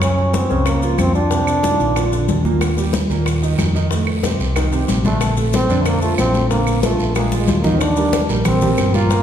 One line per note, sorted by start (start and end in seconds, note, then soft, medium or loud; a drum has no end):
0.00 0.44 F#2 medium
0.00 0.12 C#3 medium
0.00 0.12 C#4 medium
0.00 0.36 C#4 medium
0.00 high bongo medium
0.00 high conga soft
0.00 claves medium
0.00 maracas medium
0.18 0.44 F#3 medium
0.18 0.45 F#4 medium
0.18 high bongo soft
0.18 high conga soft
0.34 0.66 C4 medium
0.34 high bongo medium
0.34 high conga medium
0.34 maracas medium
0.50 0.96 C#2 medium
0.50 0.77 C#3 medium
0.50 0.77 C#4 medium
0.50 high bongo soft
0.50 high conga soft
0.50 maracas soft
0.66 1.01 A#3 medium
0.66 high bongo medium
0.66 high conga soft
0.66 claves medium
0.66 maracas medium
0.82 1.09 F3 medium
0.82 1.09 F4 medium
0.82 high bongo soft
0.82 high conga soft
0.82 maracas medium
0.98 1.74 F2 medium
0.98 1.15 C4 medium
0.98 high bongo soft
0.98 low bongo medium
0.98 high conga medium
0.98 claves medium
0.98 maracas medium
1.15 1.28 F3 medium
1.15 2.41 D4 loud
1.15 1.28 F4 medium
1.15 maracas soft
1.31 1.57 C3 medium
1.31 1.58 C4 medium
1.31 high bongo medium
1.31 high conga soft
1.31 maracas medium
1.47 high bongo soft
1.47 high conga soft
1.47 claves medium
1.47 maracas medium
1.63 1.90 D#3 medium
1.63 1.90 F4 medium
1.63 high bongo medium
1.63 high conga medium
1.63 maracas medium
1.80 2.25 A#1 medium
1.80 high bongo soft
1.80 high conga soft
1.80 maracas soft
1.96 2.09 F3 medium
1.96 2.09 F4 medium
1.96 high bongo medium
1.96 high conga soft
1.96 claves medium
1.96 maracas medium
2.12 2.39 D3 medium
2.12 2.39 D4 medium
2.12 high bongo soft
2.12 high conga soft
2.12 maracas medium
2.28 3.04 D#2 medium
2.28 high bongo soft
2.28 low bongo medium
2.28 high conga medium
2.28 maracas medium
2.45 2.71 A#2 medium
2.45 2.72 A#3 medium
2.45 high conga medium
2.45 maracas soft
2.61 high bongo medium
2.61 high conga soft
2.61 long guiro medium
2.61 claves medium
2.61 maracas medium
2.77 3.04 G3 medium
2.77 3.04 G4 medium
2.77 high bongo soft
2.77 high conga soft
2.77 maracas medium
2.93 high bongo medium
2.93 high conga medium
2.93 short guiro medium
2.93 maracas medium
3.10 3.55 D#2 medium
3.10 3.36 A#2 medium
3.10 3.37 A#3 medium
3.10 high bongo soft
3.10 high conga soft
3.10 short guiro medium
3.10 maracas soft
3.26 high bongo medium
3.26 high conga soft
3.26 long guiro medium
3.26 claves medium
3.26 maracas medium
3.42 3.69 D#3 medium
3.42 3.69 D#4 medium
3.42 high bongo soft
3.42 high conga soft
3.42 maracas medium
3.58 4.34 F2 medium
3.58 high bongo soft
3.58 low bongo medium
3.58 high conga medium
3.58 short guiro medium
3.58 claves medium
3.58 maracas medium
3.75 3.88 D#3 medium
3.75 3.89 D#4 medium
3.75 short guiro medium
3.75 maracas soft
3.91 4.18 A2 medium
3.91 4.18 A3 medium
3.91 high bongo medium
3.91 high conga soft
3.91 long guiro medium
3.91 maracas medium
4.07 high bongo soft
4.07 high conga soft
4.07 claves medium
4.23 4.50 C3 medium
4.23 4.50 C4 medium
4.23 high bongo medium
4.23 high conga medium
4.23 short guiro medium
4.23 maracas medium
4.39 4.85 C2 medium
4.39 high bongo soft
4.39 high conga soft
4.39 short guiro medium
4.39 maracas soft
4.56 4.69 D#3 medium
4.56 4.69 D#4 medium
4.56 high bongo medium
4.56 high conga soft
4.56 long guiro medium
4.56 claves medium
4.56 maracas medium
4.72 4.99 C3 medium
4.72 4.99 C4 medium
4.72 high bongo soft
4.72 high conga soft
4.72 maracas soft
4.88 5.64 A#1 medium
4.88 high bongo soft
4.88 low bongo medium
4.88 high conga medium
4.88 short guiro medium
4.88 maracas medium
5.05 5.31 D3 medium
5.05 5.35 A3 medium
5.05 5.32 D4 medium
5.05 high conga medium
5.05 short guiro medium
5.05 maracas soft
5.21 high bongo medium
5.21 high conga soft
5.21 long guiro medium
5.21 claves medium
5.21 maracas medium
5.37 5.64 A3 medium
5.37 5.64 A4 medium
5.37 high bongo soft
5.37 high conga soft
5.37 maracas medium
5.53 5.84 C4 loud
5.53 high bongo medium
5.53 high conga medium
5.53 short guiro medium
5.53 maracas medium
5.69 6.15 F2 medium
5.69 5.96 D3 medium
5.69 5.96 D4 medium
5.69 high bongo soft
5.69 high conga soft
5.69 short guiro medium
5.69 maracas soft
5.82 5.88 A3 medium
5.82 high bongo medium
5.82 long guiro medium
5.82 claves medium
5.82 maracas medium
5.86 6.01 A#3 medium
5.86 high conga soft
6.02 6.29 F3 medium
6.02 6.17 A3 medium
6.02 6.29 F4 medium
6.02 high bongo soft
6.02 high conga soft
6.02 maracas medium
6.18 6.94 A#1 medium
6.18 6.48 C4 medium
6.18 high bongo soft
6.18 low bongo medium
6.18 high conga medium
6.18 short guiro medium
6.18 claves medium
6.18 maracas medium
6.34 6.48 A3 medium
6.34 6.48 A4 medium
6.34 high conga medium
6.34 short guiro medium
6.34 maracas soft
6.50 6.77 D3 medium
6.50 6.81 A#3 medium
6.50 6.78 D4 medium
6.50 high bongo medium
6.50 high conga soft
6.50 long guiro medium
6.50 maracas medium
6.67 high bongo soft
6.67 high conga soft
6.67 claves medium
6.67 maracas medium
6.83 7.10 F3 medium
6.83 7.13 A3 medium
6.83 7.10 F4 medium
6.83 high bongo medium
6.83 high conga medium
6.83 short guiro medium
6.83 maracas medium
6.99 7.45 A#1 medium
6.99 high bongo soft
6.99 high conga soft
6.99 short guiro medium
6.99 maracas soft
7.15 7.29 G#3 medium
7.15 7.36 A#3 medium
7.15 7.29 G#4 medium
7.15 high bongo medium
7.15 high conga soft
7.15 long guiro medium
7.15 claves medium
7.15 maracas medium
7.32 7.59 F3 medium
7.32 7.59 F4 medium
7.32 high bongo soft
7.32 high conga medium
7.32 maracas medium
7.38 7.62 G#3 medium
7.48 8.24 D#2 medium
7.48 high bongo soft
7.48 low bongo medium
7.48 high conga medium
7.48 short guiro medium
7.48 maracas medium
7.60 7.83 A#3 medium
7.60 low conga medium
7.60 short guiro medium
7.64 7.78 D#3 medium
7.64 7.78 D#4 medium
7.64 maracas soft
7.80 8.30 D4 medium
7.80 high bongo medium
7.80 high conga soft
7.80 long guiro medium
7.80 claves medium
7.80 maracas medium
7.97 8.24 G3 medium
7.97 8.24 G4 medium
7.97 8.24 A#4 medium
7.97 high bongo soft
7.97 high conga soft
7.97 maracas medium
8.13 high bongo medium
8.13 high conga loud
8.13 short guiro medium
8.13 maracas medium
8.29 8.75 A#1 medium
8.29 8.56 G3 medium
8.29 8.56 G4 medium
8.29 8.56 A#4 medium
8.29 high bongo soft
8.29 high conga soft
8.29 short guiro medium
8.29 maracas soft
8.45 8.97 C4 medium
8.45 high bongo medium
8.45 high conga soft
8.45 low conga medium
8.45 long guiro medium
8.45 claves medium
8.45 maracas medium
8.61 8.88 G3 medium
8.61 8.89 G4 medium
8.61 8.89 A#4 medium
8.61 high bongo soft
8.61 high conga soft
8.61 low conga medium
8.61 maracas medium
8.77 9.23 G1 medium
8.77 high bongo soft
8.77 low bongo medium
8.77 high conga medium
8.77 short guiro medium
8.77 claves medium
8.77 maracas medium
8.94 9.08 F3 medium
8.94 9.23 A#3 loud
8.94 9.08 F4 medium
8.94 9.08 F5 medium
8.94 high conga medium
8.94 short guiro medium
8.94 maracas soft
9.10 9.23 F3 medium
9.10 9.23 F4 medium
9.10 9.23 F5 medium
9.10 high bongo medium
9.10 high conga soft
9.10 long guiro medium
9.10 maracas medium